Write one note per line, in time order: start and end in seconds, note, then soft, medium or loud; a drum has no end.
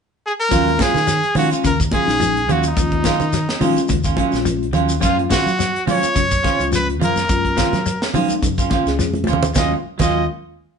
0.26 0.33 G#4 medium
0.40 0.83 A#4 loud
0.49 0.76 D#2 medium
0.49 0.66 F3 medium
0.49 0.70 F#3 medium
0.49 0.93 G#3 medium
0.49 0.70 A#3 medium
0.49 0.93 C#4 medium
0.49 0.70 C#4 medium
0.49 0.94 F4 medium
0.49 0.70 F4 medium
0.49 kick medium
0.49 closed hi-hat medium
0.49 shekere medium
0.67 closed hi-hat soft
0.79 0.97 F#3 medium
0.79 0.98 A#3 medium
0.79 0.98 C#4 medium
0.79 0.98 F4 medium
0.79 1.37 G#4 loud
0.79 muted clean electric guitar stroke medium
0.79 kick medium
0.79 snare medium
0.79 closed hi-hat soft
0.79 high conga medium
0.79 shekere medium
0.94 1.20 D#3 medium
0.94 snare soft
0.94 closed hi-hat soft
0.94 low conga medium
0.94 shekere soft
1.07 1.22 F#3 medium
1.07 snare soft
1.07 closed hi-hat medium
1.07 shekere medium
1.23 closed hi-hat soft
1.35 1.50 D#3 medium
1.35 1.51 F3 medium
1.35 1.70 G#3 medium
1.35 1.50 A#3 medium
1.35 1.71 C#4 medium
1.35 1.50 C#4 medium
1.35 1.50 F4 medium
1.35 1.71 F4 medium
1.35 1.50 F#4 medium
1.35 open hi-hat medium
1.35 high conga medium
1.35 low conga medium
1.35 shekere soft
1.51 1.68 A#3 soft
1.51 1.68 C#4 soft
1.51 1.67 F4 soft
1.51 muted fingered electric bass stroke soft
1.51 closed hi-hat soft
1.51 shekere medium
1.64 1.89 D#2 medium
1.64 1.79 C#3 medium
1.64 1.78 A#4 medium
1.64 kick medium
1.64 closed hi-hat medium
1.64 shekere medium
1.80 kick medium
1.80 shekere medium
1.91 2.07 D#3 medium
1.91 2.10 F#3 medium
1.91 2.11 A#3 medium
1.91 2.11 C#4 medium
1.91 2.11 F4 medium
1.91 2.53 G#4 loud
1.91 kick medium
1.91 closed hi-hat soft
1.91 high conga medium
2.06 2.49 A#1 medium
2.06 2.40 G#3 medium
2.06 2.41 C#4 medium
2.06 2.41 D#4 medium
2.06 snare soft
2.06 closed hi-hat soft
2.06 shekere soft
2.20 2.35 F3 medium
2.20 closed hi-hat medium
2.20 high conga medium
2.20 shekere medium
2.36 closed hi-hat soft
2.48 2.73 D#2 medium
2.48 2.64 F3 medium
2.48 2.66 F#3 medium
2.48 2.67 A#3 medium
2.48 2.67 C#4 medium
2.48 2.67 F4 medium
2.48 2.66 F#4 medium
2.48 closed hi-hat soft
2.48 low conga medium
2.48 shekere soft
2.63 3.74 D#4 medium
2.63 shekere medium
2.76 3.01 D#2 medium
2.76 2.92 F3 medium
2.76 3.19 G#3 medium
2.76 3.20 C#4 medium
2.76 3.19 F4 medium
2.76 kick medium
2.76 closed hi-hat medium
2.76 shekere medium
2.91 kick medium
2.91 closed hi-hat soft
3.04 3.20 D#3 medium
3.04 3.23 F#3 medium
3.04 3.23 A#3 medium
3.04 3.23 C#4 medium
3.04 3.23 F4 medium
3.04 kick medium
3.04 snare medium
3.04 closed hi-hat soft
3.04 high conga medium
3.04 shekere medium
3.20 3.45 D#3 medium
3.20 closed hi-hat soft
3.20 low conga medium
3.20 shekere soft
3.33 3.49 F#3 medium
3.33 snare soft
3.33 closed hi-hat medium
3.33 shekere medium
3.49 snare medium
3.59 3.75 D#3 medium
3.59 3.76 F3 medium
3.59 3.78 F#3 medium
3.59 3.96 G#3 loud
3.59 3.79 A#3 medium
3.59 3.95 C#4 medium
3.59 3.79 C#4 medium
3.59 3.96 F4 loud
3.59 3.79 F4 medium
3.59 open hi-hat medium
3.59 high conga medium
3.59 low conga medium
3.59 shekere soft
3.77 muted fingered electric bass stroke soft
3.77 closed hi-hat soft
3.77 shekere medium
3.88 4.14 D#2 medium
3.88 4.04 C#3 medium
3.88 kick medium
3.88 closed hi-hat medium
3.88 high conga medium
3.88 shekere medium
4.04 4.16 A#3 soft
4.04 4.16 C#4 soft
4.04 4.17 F4 soft
4.04 kick medium
4.04 closed hi-hat soft
4.04 shekere medium
4.17 4.32 D#3 medium
4.17 4.35 F#3 medium
4.17 4.35 A#3 medium
4.17 4.36 C#4 medium
4.17 4.36 F4 medium
4.17 kick medium
4.17 closed hi-hat soft
4.17 high conga medium
4.30 4.74 A#1 medium
4.30 4.65 G#3 medium
4.30 4.65 C#4 medium
4.30 4.66 F4 loud
4.30 shekere soft
4.34 snare soft
4.34 closed hi-hat soft
4.45 4.60 F3 medium
4.45 closed hi-hat medium
4.45 high conga medium
4.45 shekere medium
4.63 closed hi-hat soft
4.73 4.98 D#2 medium
4.73 4.88 F3 medium
4.73 4.92 F#3 medium
4.73 4.92 A#3 medium
4.73 4.92 C#4 medium
4.73 4.92 F4 medium
4.73 closed hi-hat soft
4.73 low conga medium
4.73 shekere soft
4.89 shekere medium
4.99 5.27 F#2 medium
4.99 5.19 F3 medium
4.99 5.16 F3 medium
4.99 5.43 G#3 medium
4.99 5.20 A#3 medium
4.99 5.44 C#4 medium
4.99 5.20 C#4 medium
4.99 5.43 F4 medium
4.99 5.20 F4 medium
4.99 kick medium
4.99 shekere medium
5.04 5.17 F4 medium
5.04 closed hi-hat medium
5.19 closed hi-hat soft
5.29 5.45 D#3 medium
5.29 5.48 F3 medium
5.29 5.48 A#3 medium
5.29 5.48 C#4 medium
5.29 5.49 F4 medium
5.29 5.84 F#4 loud
5.29 kick medium
5.29 snare medium
5.29 closed hi-hat soft
5.29 high conga medium
5.29 shekere medium
5.46 5.70 F#3 medium
5.46 closed hi-hat soft
5.46 shekere soft
5.59 5.74 F#3 medium
5.59 snare soft
5.59 closed hi-hat medium
5.59 shekere medium
5.76 closed hi-hat soft
5.86 6.04 F3 medium
5.86 6.02 F3 medium
5.86 6.01 F#3 medium
5.86 6.21 G#3 medium
5.86 6.05 A#3 medium
5.86 6.22 C#4 medium
5.86 6.05 C#4 medium
5.86 6.05 F4 medium
5.86 6.22 F4 medium
5.86 open hi-hat medium
5.86 high conga medium
5.86 low conga medium
5.86 shekere soft
5.91 6.70 C#5 loud
6.03 muted fingered electric bass stroke soft
6.03 closed hi-hat soft
6.03 shekere medium
6.16 6.40 F#2 medium
6.16 6.30 C#3 medium
6.16 kick medium
6.16 closed hi-hat medium
6.16 shekere medium
6.31 kick medium
6.31 shekere medium
6.43 6.59 D#3 medium
6.43 6.61 F3 medium
6.43 6.62 C#4 medium
6.43 6.62 F4 medium
6.43 muted clean electric guitar stroke medium
6.43 kick medium
6.43 snare soft
6.43 closed hi-hat soft
6.43 high conga medium
6.59 7.01 C#2 medium
6.59 6.93 G#3 medium
6.59 6.93 C#4 medium
6.59 6.93 F4 medium
6.59 closed hi-hat soft
6.59 shekere soft
6.72 6.87 F3 medium
6.72 6.87 B4 medium
6.72 snare soft
6.72 closed hi-hat medium
6.72 high conga medium
6.72 shekere medium
6.89 closed hi-hat soft
7.00 7.25 F#2 medium
7.00 7.18 F3 medium
7.00 7.16 F3 medium
7.00 7.18 A#3 medium
7.00 7.19 F4 medium
7.00 8.12 A#4 medium
7.00 muted clean electric guitar stroke medium
7.00 closed hi-hat medium
7.00 low conga medium
7.00 shekere soft
7.16 snare soft
7.16 high conga medium
7.16 shekere medium
7.29 7.54 F#2 medium
7.29 7.71 G#3 medium
7.29 7.71 C#4 medium
7.29 7.72 F4 medium
7.29 muted clean electric guitar stroke medium
7.29 kick medium
7.29 closed hi-hat medium
7.29 shekere medium
7.45 kick soft
7.45 closed hi-hat soft
7.56 7.72 D#3 medium
7.56 7.75 F3 medium
7.56 7.75 A#3 soft
7.56 7.75 C#4 medium
7.56 7.75 F4 medium
7.56 kick medium
7.56 snare medium
7.56 closed hi-hat soft
7.56 high conga medium
7.56 shekere medium
7.73 7.97 F#3 medium
7.73 snare soft
7.73 closed hi-hat soft
7.73 high conga medium
7.73 low conga medium
7.73 shekere soft
7.86 8.01 F#3 medium
7.86 closed hi-hat medium
7.86 shekere medium
8.02 snare medium
8.13 8.32 F3 medium
8.13 8.29 F3 medium
8.13 8.28 F#3 medium
8.13 8.49 G#3 medium
8.13 8.32 A#3 medium
8.13 8.49 C#4 medium
8.13 8.32 C#4 medium
8.13 8.49 D#4 loud
8.13 8.32 F4 medium
8.13 open hi-hat medium
8.13 high conga medium
8.13 low conga medium
8.13 shekere soft
8.29 muted fingered electric bass stroke soft
8.29 closed hi-hat soft
8.29 shekere medium
8.43 8.67 F#2 medium
8.43 8.57 C#3 medium
8.43 kick medium
8.43 closed hi-hat medium
8.43 shekere medium
8.58 8.69 A#3 soft
8.58 8.70 C#4 soft
8.58 8.70 F4 soft
8.58 kick medium
8.58 closed hi-hat soft
8.58 shekere medium
8.70 8.85 D#3 medium
8.70 8.89 F3 medium
8.70 8.89 A#3 medium
8.70 8.89 C#4 medium
8.70 8.89 F4 medium
8.70 kick medium
8.70 snare soft
8.70 closed hi-hat soft
8.70 high conga medium
8.86 8.99 C#2 medium
8.86 9.20 G#3 medium
8.86 9.21 C#4 medium
8.86 9.21 G#4 medium
8.86 snare soft
8.86 closed hi-hat soft
8.86 shekere soft
8.99 9.25 F2 medium
8.99 9.14 F3 medium
8.99 snare soft
8.99 closed hi-hat medium
8.99 high conga medium
8.99 shekere medium
9.14 closed hi-hat soft
9.14 high conga medium
9.24 9.45 F3 medium
9.24 9.42 F3 medium
9.24 9.45 A#3 medium
9.24 closed hi-hat soft
9.24 high conga loud
9.28 9.54 D#2 medium
9.28 9.46 C#4 medium
9.28 9.46 F4 medium
9.28 shekere soft
9.33 low conga medium
9.43 low conga medium
9.43 shekere medium
9.54 9.73 D#2 medium
9.54 9.73 F#3 medium
9.54 9.73 G#3 medium
9.54 9.73 A#3 medium
9.54 9.74 C#4 medium
9.54 9.73 C#4 medium
9.54 9.74 F4 medium
9.54 9.73 F4 medium
9.54 muted clean electric guitar stroke medium
9.54 kick medium
9.54 snare medium
9.54 low conga loud
9.54 shekere medium
9.58 9.74 D#5 medium
9.98 10.26 D#2 medium
9.98 10.21 F#3 medium
9.98 10.27 G#3 medium
9.98 10.22 A#3 medium
9.98 10.22 C#4 medium
9.98 10.27 C#4 medium
9.98 10.27 F4 medium
9.98 10.23 F4 medium
9.98 10.26 D#5 medium
9.98 muted clean electric guitar stroke medium
9.98 kick medium
9.98 crash medium
9.98 low conga medium
9.98 shekere loud